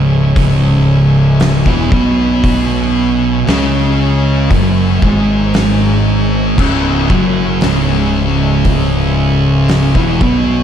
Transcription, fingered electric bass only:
Already playing: C#1
1.66 E1
1.92 B1
3.48 C#2
4.51 F#1
5.03 G#1
6.59 C#1
7.11 F#1
7.63 C#1
9.96 E1
10.22 B1

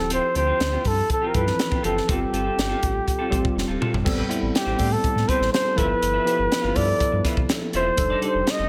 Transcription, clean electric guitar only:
0.10 C4 F4 G4
0.23 muted clean electric guitar stroke
0.35 C4 F4 G4
0.47 C4 F4 G4
0.60 muted clean electric guitar stroke
0.72 C4 F4 G4
0.83 muted clean electric guitar stroke
0.97 muted clean electric guitar stroke
1.10 muted clean electric guitar stroke
1.22 C4 F4 G4
1.34 C4 F4 G4
1.46 muted clean electric guitar stroke
1.58 muted clean electric guitar stroke
1.71 C4 F4 G4
1.83 C4 F4 G4
1.96 muted clean electric guitar stroke
2.08 C4 F4 A4
2.21 muted clean electric guitar stroke
2.33 C4 F4 A4
2.44 C4 F4 A4
2.57 muted clean electric guitar stroke
2.69 C4 F4 A4
2.82 muted clean electric guitar stroke
2.94 muted clean electric guitar stroke
3.06 muted clean electric guitar stroke
3.19 C4 F4 A4
3.30 C4 F4 A4
3.43 muted clean electric guitar stroke
3.56 muted clean electric guitar stroke
3.67 C4 F4 A4
3.80 C4 F4 A4
3.93 muted clean electric guitar stroke
4.04 muted clean electric guitar stroke
4.17 C4 G4 B4
4.29 C4 G4 B4
4.41 muted clean electric guitar stroke
4.54 muted clean electric guitar stroke
4.65 C4 G4 C5
4.78 C4 G4 C5
4.91 muted clean electric guitar stroke
5.04 muted clean electric guitar stroke
5.16 muted clean electric guitar stroke
5.28 C4 G4 B4
5.40 muted clean electric guitar stroke
5.66 muted clean electric guitar stroke
5.77 F4 B4 E5
5.89 muted clean electric guitar stroke
6.02 muted clean electric guitar stroke
6.14 F4 B4 E5
6.26 F4 B4 E5
6.38 muted clean electric guitar stroke
6.51 muted clean electric guitar stroke
6.62 F4 B4 F5
6.75 F4 B4 F5
6.88 muted clean electric guitar stroke
7.00 muted clean electric guitar stroke
7.12 muted clean electric guitar stroke
7.24 F4 B4 E5
7.37 muted clean electric guitar stroke
7.62 muted clean electric guitar stroke
7.74 F4 B4 E5
7.87 muted clean electric guitar stroke
7.99 muted clean electric guitar stroke
8.10 D#4 A4 D5
8.21 D#4 A4 D5
8.34 muted clean electric guitar stroke
8.46 muted clean electric guitar stroke
8.57 D#4 A4 D#5

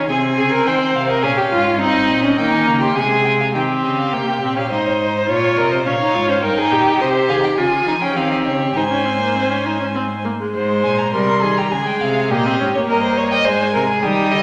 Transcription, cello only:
0.09 C3
0.38 C#3
0.67 D#3
0.95 C3
1.24 A#2
1.52 G#2
1.81 G2
2.09 A#2
2.38 D#3
2.67 C#3
2.96 C3
3.54 D#3
3.83 C#3
4.12 C3
4.42 A#2
4.71 G#2
5.29 A#2
5.57 C3
5.86 A#2
6.14 G#2
6.43 G2
6.71 A#2
7.00 C3
7.29 D#3
7.58 C#3
7.87 F3
8.17 D#3
8.46 C#3
8.76 G#2
10.54 G#2
10.84 A#2
11.13 C3
11.43 D#3
11.72 C#3
12.01 C3
12.31 A#2
12.60 G#2
12.89 G2
13.46 G#2
13.75 C3
14.03 D#3
14.32 D3

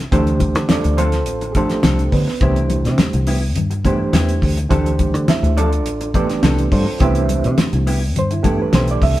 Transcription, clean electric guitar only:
0.12 F3 C4 D4 A4
0.41 muted clean electric guitar stroke
0.70 muted clean electric guitar stroke
0.84 muted clean electric guitar stroke
0.97 F3 C4 D4 A4
1.14 muted clean electric guitar stroke
1.42 muted clean electric guitar stroke
1.56 F3 C4 D4 A4
1.70 muted clean electric guitar stroke
1.84 F3 C4 D4 A4
2.13 muted clean electric guitar stroke
2.28 muted clean electric guitar stroke
2.42 B3 E4 G4
2.70 muted clean electric guitar stroke
2.99 muted clean electric guitar stroke
3.14 muted clean electric guitar stroke
3.27 B3 E4 G4
3.42 muted clean electric guitar stroke
3.70 muted clean electric guitar stroke
3.85 B3 E4 G4
3.99 muted clean electric guitar stroke
4.13 B3 E4 G4
4.42 muted clean electric guitar stroke
4.57 muted clean electric guitar stroke
4.70 F3 C4 D4 A4
5.00 muted clean electric guitar stroke
5.28 muted clean electric guitar stroke
5.43 muted clean electric guitar stroke
5.57 F3 C4 D4 A4
5.72 muted clean electric guitar stroke
6.01 muted clean electric guitar stroke
6.14 F3 C4 D4 A4
6.29 muted clean electric guitar stroke
6.43 F3 C4 D4 A4
6.72 muted clean electric guitar stroke
6.86 muted clean electric guitar stroke
7.00 B3 E4 G4
7.30 muted clean electric guitar stroke
7.58 muted clean electric guitar stroke
7.73 muted clean electric guitar stroke
7.87 B3 E4 G4
8.02 muted clean electric guitar stroke
8.31 muted clean electric guitar stroke
8.44 B3 E4 G4
8.59 muted clean electric guitar stroke
8.73 B3 E4 G4
9.02 muted clean electric guitar stroke

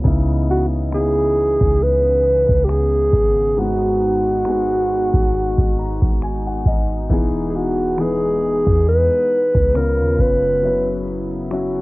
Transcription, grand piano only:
0.04 C#3 B3 D#4 E4
0.92 C#3 B3 D#4 E4
3.56 G#2 G#3 B3 F#4
4.45 G#2 G#3 B3 G#4
5.79 A#5
6.23 G#5
6.47 F#5
6.67 D#5
7.10 E3 B3 D#4 G#4
7.98 E3 B3 D#4 B4
9.74 C#3 B3 C#4 F4
10.63 F#3 C#4 E4 B4
11.51 F#3 C#4 E4 F#4

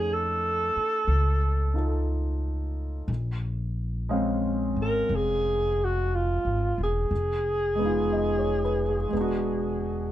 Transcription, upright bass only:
Already playing: F2
0.76 muted upright bass stroke
1.07 C#2
3.08 A#1
4.76 G#1
5.09 F1
6.45 G#1
6.78 E1
7.11 F1
9.13 E1

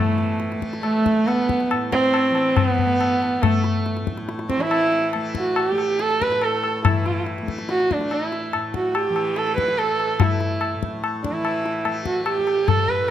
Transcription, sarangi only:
Already playing: A3
0.83 A3
1.27 B3
1.93 C4
2.56 C4
2.67 B3
3.42 A3
4.50 C4
4.61 E4
5.38 F#4
5.59 F#4
5.71 G4
6.01 A4
6.22 B4
6.43 A4
6.86 E4
7.70 F#4
7.92 D4
8.14 E4
8.75 F#4
8.95 G4
9.37 A4
9.58 B4
9.78 A4
10.21 E4
11.23 D4
11.33 E4
12.06 F#4
12.27 G4
12.68 A4
12.89 B4

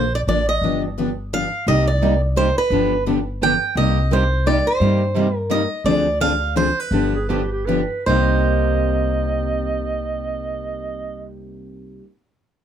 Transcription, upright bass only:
Already playing: A#1
0.27 A1
0.61 G1
1.67 C2
2.70 G1
3.75 C2
4.80 G2
5.84 D2
6.91 G1
8.07 C2

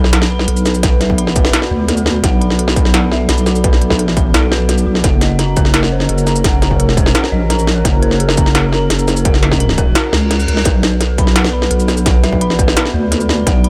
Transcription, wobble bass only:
Already playing: B1
0.48 B1
1.21 A#1
1.71 D2
2.24 B1
3.29 B1
4.02 A#1
4.34 B1
4.87 B1
5.04 F#1
6.09 F#1
6.82 F1
7.32 A#1
7.85 F#1
8.90 F#1
10.13 C#2
10.48 C#2
10.66 B1
11.71 B1
12.44 A#1
12.94 D2
13.47 B1

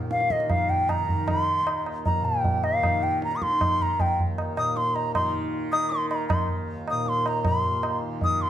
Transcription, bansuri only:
0.11 F5
0.31 D#5
0.50 F5
0.70 G5
0.90 A#5
1.27 C6
2.06 A#5
2.25 G5
2.64 F5
3.03 G5
3.24 A#5
3.36 D#6
3.43 C6
3.82 A#5
4.00 G5
4.57 D#6
4.76 C6
4.95 A#5
5.15 C6
5.72 D#6
5.90 C6
6.09 A#5
6.28 C6
6.90 D#6
7.08 C6
7.27 A#5
7.46 C6
8.24 D#6
8.42 C6

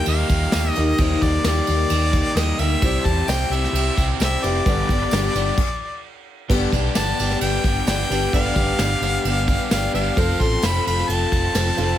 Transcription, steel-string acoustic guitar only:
Already playing: A#3 D#4 G4
0.54 G3 A#3 D#4 G4
0.77 A#3 D#4 G4
1.00 D#3 G3 A#3 D#4 G4
1.22 A#3 D#4 G4
1.45 G3 A#3 D#4 G4
1.69 A#3 D#4 G4
2.37 G3 A#3 D#4 G4
2.60 A#3 D#4 G4
2.83 C3 G3 C4 E4 G4
3.06 C4 E4 G4
3.28 G3 C4 E4 G4
3.51 C4 E4 G4
4.21 G3 C4 E4 G4
4.44 C4 E4 G4
4.67 G2 D3 G3 B3 D4 G4
4.89 G3 B3 D4 G4
5.13 G3 B3 D4 G4
5.35 G3 B3 D4 G4
6.50 G2 D3 G3 B3 D4 G4
6.72 G3 B3 D4 G4
6.96 G3 B3 D4 G4
7.19 G3 B3 D4 G4
7.88 G3 B3 D4 G4
8.10 G3 B3 D4 G4
8.33 G2 D3 G3 B3 D4 G4
8.56 G3 B3 D4 G4
8.80 G3 B3 D4 G4
9.02 G3 B3 D4 G4
9.71 G3 B3 D4 G4
9.93 G3 B3 D4 G4
10.15 F3 C4 F4 A4
10.38 C4 F4 A4
10.62 F3 C4 F4 A4
10.86 C4 F4 A4
11.56 F3 C4 F4 A4
11.78 C4 F4 A4

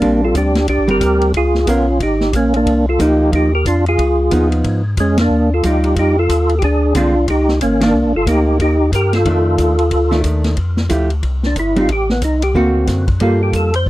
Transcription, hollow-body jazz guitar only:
0.02 G3 C4 D4
0.88 G3 C4 D4
1.67 B3 F4 A#4
2.99 F3 A#3 D#4
4.31 F3 B3 D#4
5.64 G3 F4
6.95 D3 G#3 C4 F4
7.81 D#3 A#3 D4
8.27 A#3
9.26 D#3 A3 D4
10.11 D#3 A3 D4
10.89 F3 A3 E4 G4
11.76 G3 C4 D#4
12.55 D3 A#3 C4 F#4
13.21 G3 A#3 F4 A4

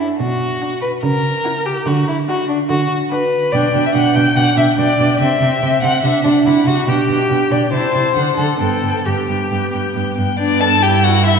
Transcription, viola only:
0.62 D4
1.45 E4
2.29 D4
3.12 D4
3.54 D4
3.75 D4
3.95 D4
4.16 D4
4.37 D4
4.58 D4
4.79 D4
5.00 D4
5.21 C4
5.41 C4
5.62 C4
5.83 C4
6.04 D4
6.25 D4
6.46 D4
6.67 D4
6.88 D4
7.09 D4
7.29 D4
7.51 D4
7.72 E4
7.93 E4
8.16 D4
8.38 D4
8.60 B3
8.83 B3
9.06 B3
9.29 B3
9.51 B3
9.74 B3
9.96 B3
10.18 B3
10.40 B3
10.83 E4

